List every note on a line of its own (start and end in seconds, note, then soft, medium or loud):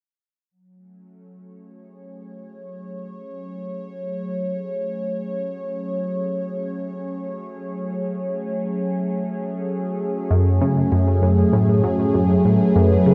0.51 13.14 F#3 medium
0.67 13.14 C#4 medium
0.72 13.14 A3 medium
1.01 12.59 C#5 medium
1.54 13.14 G#4 medium
10.31 10.60 F#2 medium
10.61 10.83 C#3 medium
10.92 11.21 F#2 medium
11.22 11.44 F#2 medium
11.53 11.82 A2 medium
11.84 12.05 F#3 medium
12.14 12.36 F#2 medium
12.40 13.14 B4 medium
12.45 12.58 A2 medium
12.76 12.97 F#2 medium
13.06 13.14 C#3 medium